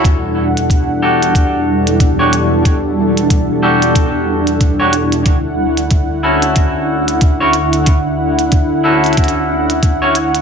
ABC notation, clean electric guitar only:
X:1
M:4/4
L:1/16
Q:"Swing 16ths" 1/4=92
K:Edor
V:1 name="Clean electric guitar"
z6 [DFGA]6- [DFGA] [DFGc] z2 | z6 [DFGA]6- [DFGA] [DFGc] z2 | z6 [CEFA]6- [CEFA] [CEFc] z2 | z6 [CEFA]6- [CEFA] [CEFc] z2 |]